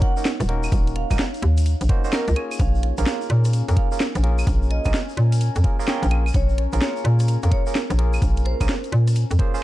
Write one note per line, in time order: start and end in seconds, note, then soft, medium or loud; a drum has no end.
0.00 0.13 A#3 medium
0.00 0.13 C#4 medium
0.00 0.13 D#4 medium
0.00 4.09 D#4 medium
0.00 0.13 F#4 medium
0.00 0.13 A#4 medium
0.00 3.73 C#5 medium
0.00 2.36 F#5 medium
0.00 0.22 F#5 medium
0.00 kick loud
0.00 closed hi-hat loud
0.17 0.30 A#3 medium
0.17 0.30 C#4 medium
0.17 0.30 D#4 medium
0.17 0.30 F#4 medium
0.17 0.30 A#4 medium
0.17 shaker medium
0.25 snare loud
0.25 shaker medium
0.40 0.69 D#1 loud
0.40 cross-stick medium
0.40 closed hi-hat medium
0.40 shaker soft
0.49 1.07 A#3 medium
0.49 1.07 C#4 medium
0.49 1.07 D#4 medium
0.49 1.07 F#4 medium
0.49 1.07 A#4 loud
0.49 closed hi-hat loud
0.63 claves medium
0.63 shaker medium
0.72 1.05 D#1 loud
0.72 kick loud
0.72 closed hi-hat medium
0.72 shaker medium
0.87 closed hi-hat medium
0.87 shaker soft
0.96 1.21 F5 medium
0.96 cross-stick soft
0.96 closed hi-hat loud
1.10 1.17 D#1 medium
1.10 1.24 A#3 medium
1.10 1.24 C#4 medium
1.10 1.24 D#4 medium
1.10 1.24 F#4 medium
1.10 1.24 A#4 loud
1.10 kick medium
1.10 closed hi-hat medium
1.10 claves medium
1.10 shaker medium
1.18 snare loud
1.18 shaker medium
1.34 closed hi-hat soft
1.34 shaker soft
1.42 1.75 D#2 loud
1.42 closed hi-hat loud
1.57 closed hi-hat medium
1.57 shaker medium
1.66 closed hi-hat medium
1.66 shaker medium
1.81 1.87 A#1 medium
1.81 closed hi-hat medium
1.81 shaker soft
1.89 2.02 A#3 loud
1.89 2.02 C#4 medium
1.89 2.02 D#4 medium
1.89 2.02 F#4 medium
1.89 2.02 C5 loud
1.89 kick loud
1.89 closed hi-hat loud
2.04 2.11 A#3 medium
2.04 2.11 C#4 medium
2.04 2.11 D#4 medium
2.04 2.11 F#4 medium
2.04 2.11 C5 medium
2.04 shaker medium
2.12 2.25 A#3 medium
2.12 2.25 C#4 medium
2.12 2.25 D#4 medium
2.12 2.25 F#4 medium
2.12 2.38 A#4 medium
2.12 2.25 A#4 loud
2.12 snare loud
2.12 shaker medium
2.28 2.34 C#2 loud
2.28 closed hi-hat medium
2.28 shaker soft
2.36 2.94 A#3 medium
2.36 9.63 C#4 medium
2.36 2.94 C#4 medium
2.36 2.94 F4 medium
2.36 2.94 G#4 medium
2.36 2.94 C#5 loud
2.36 closed hi-hat loud
2.36 claves medium
2.51 closed hi-hat soft
2.51 claves medium
2.51 shaker medium
2.60 2.92 A#1 loud
2.60 2.85 F5 loud
2.60 kick loud
2.60 closed hi-hat medium
2.75 shaker soft
2.83 9.63 A#4 medium
2.83 cross-stick soft
2.83 closed hi-hat loud
2.98 3.04 A#1 medium
2.98 3.65 A#3 loud
2.98 3.65 C#4 medium
2.98 3.65 F4 medium
2.98 3.65 G#4 medium
2.98 3.65 A#4 loud
2.98 closed hi-hat medium
2.98 shaker medium
3.06 3.26 F5 loud
3.06 snare loud
3.06 shaker medium
3.21 9.63 G#5 medium
3.21 shaker soft
3.30 3.62 A#2 loud
3.30 closed hi-hat loud
3.45 cross-stick soft
3.45 closed hi-hat medium
3.45 shaker medium
3.53 closed hi-hat medium
3.53 shaker medium
3.68 3.75 F2 loud
3.68 3.88 A#3 medium
3.68 3.88 C#4 medium
3.68 3.88 F4 medium
3.68 3.88 G#4 medium
3.68 3.88 A#4 medium
3.68 closed hi-hat medium
3.68 shaker soft
3.77 3.97 F5 medium
3.77 kick loud
3.77 closed hi-hat loud
3.92 4.05 A#3 medium
3.92 4.05 C#4 medium
3.92 4.05 F4 medium
3.92 4.05 G#4 medium
3.92 4.05 A#4 medium
3.92 shaker medium
4.00 snare loud
4.00 shaker medium
4.15 4.44 A#1 loud
4.15 cross-stick medium
4.15 closed hi-hat medium
4.15 shaker soft
4.23 4.82 A#3 medium
4.23 4.82 C#4 medium
4.23 4.82 F4 medium
4.23 4.82 G#4 medium
4.23 4.82 A#4 loud
4.23 closed hi-hat loud
4.38 claves medium
4.38 shaker medium
4.47 4.80 A#1 loud
4.47 kick loud
4.47 closed hi-hat medium
4.47 shaker medium
4.62 shaker soft
4.71 4.96 D#5 loud
4.71 cross-stick soft
4.71 closed hi-hat loud
4.85 4.92 A#1 medium
4.85 4.99 A#3 loud
4.85 4.98 C#4 medium
4.85 4.99 F4 medium
4.85 4.99 G#4 medium
4.85 4.99 A#4 loud
4.85 kick medium
4.85 closed hi-hat medium
4.85 claves medium
4.85 shaker medium
4.94 snare loud
4.94 shaker medium
5.09 shaker soft
5.17 5.50 A#2 loud
5.17 closed hi-hat loud
5.32 closed hi-hat medium
5.32 shaker medium
5.41 closed hi-hat medium
5.41 shaker medium
5.55 5.62 F2 medium
5.55 closed hi-hat medium
5.55 shaker soft
5.64 5.77 A#3 medium
5.64 5.77 C#4 medium
5.64 5.77 F4 medium
5.64 5.77 G#4 medium
5.64 5.77 A#4 medium
5.64 kick loud
5.64 closed hi-hat loud
5.79 5.86 A#3 loud
5.79 5.86 C#4 medium
5.79 5.86 F4 medium
5.79 5.86 G#4 loud
5.79 5.86 A#4 loud
5.79 shaker medium
5.87 6.05 A#3 loud
5.87 6.05 C#4 medium
5.87 6.05 F4 medium
5.87 6.05 G#4 medium
5.87 6.05 A#4 loud
5.87 6.13 G5 medium
5.87 snare loud
6.03 6.31 A#1 loud
6.03 closed hi-hat medium
6.03 shaker soft
6.11 6.23 A#3 medium
6.11 6.23 C#4 medium
6.11 6.23 F4 medium
6.11 6.23 G#4 medium
6.11 6.23 A#4 medium
6.11 closed hi-hat loud
6.11 claves medium
6.26 claves medium
6.26 shaker medium
6.34 6.67 A#1 loud
6.34 6.60 C#5 loud
6.34 kick loud
6.34 closed hi-hat medium
6.34 shaker medium
6.49 shaker soft
6.58 cross-stick soft
6.58 closed hi-hat loud
6.73 6.79 A#1 medium
6.73 7.40 A#3 loud
6.73 7.40 C#4 medium
6.73 7.40 F4 medium
6.73 7.40 G#4 medium
6.73 7.40 A#4 loud
6.73 closed hi-hat medium
6.73 shaker medium
6.81 7.01 C#5 medium
6.81 snare loud
6.81 shaker medium
6.97 shaker soft
7.05 7.37 A#2 loud
7.05 closed hi-hat loud
7.19 cross-stick soft
7.19 closed hi-hat medium
7.19 shaker medium
7.28 closed hi-hat medium
7.28 shaker medium
7.42 7.50 F2 medium
7.42 7.63 A#3 medium
7.42 7.63 C#4 medium
7.42 7.63 F4 medium
7.42 7.63 G#4 medium
7.42 7.63 A#4 medium
7.42 closed hi-hat medium
7.42 shaker soft
7.51 7.71 C#5 medium
7.51 kick loud
7.51 closed hi-hat loud
7.67 7.80 A#3 medium
7.67 7.80 C#4 medium
7.67 7.80 F4 medium
7.67 7.80 G#4 medium
7.67 7.80 A#4 medium
7.67 shaker medium
7.75 snare loud
7.75 shaker medium
7.90 8.19 A#1 loud
7.90 cross-stick medium
7.90 closed hi-hat medium
7.90 shaker soft
7.98 8.57 A#3 medium
7.98 8.57 C#4 medium
7.98 8.57 F4 medium
7.98 8.57 G#4 medium
7.98 8.57 A#4 loud
7.98 closed hi-hat loud
8.13 claves medium
8.13 shaker medium
8.22 8.55 A#1 loud
8.22 kick loud
8.22 closed hi-hat medium
8.22 shaker medium
8.37 closed hi-hat medium
8.37 shaker soft
8.45 8.71 C5 loud
8.45 cross-stick soft
8.45 closed hi-hat loud
8.60 8.67 A#1 medium
8.60 8.74 A#3 loud
8.60 8.74 C#4 medium
8.60 8.74 F4 medium
8.60 8.74 G#4 medium
8.60 8.74 A#4 loud
8.60 kick medium
8.60 closed hi-hat medium
8.60 claves medium
8.60 shaker medium
8.68 snare loud
8.68 shaker medium
8.84 closed hi-hat soft
8.84 shaker soft
8.92 9.25 A#2 loud
8.92 closed hi-hat loud
9.08 cross-stick soft
9.08 closed hi-hat medium
9.08 shaker medium
9.15 closed hi-hat medium
9.15 shaker medium
9.30 9.37 F2 medium
9.30 closed hi-hat medium
9.30 shaker soft
9.39 9.52 A#3 loud
9.39 9.52 C#4 medium
9.39 9.52 F4 medium
9.39 9.52 G#4 medium
9.39 9.52 C5 loud
9.39 kick loud
9.39 closed hi-hat loud
9.54 9.61 A#3 medium
9.54 9.61 C#4 medium
9.54 9.61 F4 medium
9.54 9.61 G#4 medium
9.54 9.61 C5 loud
9.54 shaker medium